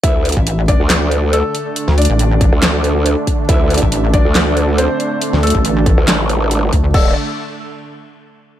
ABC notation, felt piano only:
X:1
M:4/4
L:1/8
Q:"Swing 16ths" 1/4=139
K:Cmix
V:1 name="Felt piano"
[Ee]3 [Dd]3 [A,A]2- | [A,A] [Dd]6- [Dd] | [Ee]3 [Dd]3 [Cc]2- | [Cc] [A,A]6- [A,A] |
A z6 z |]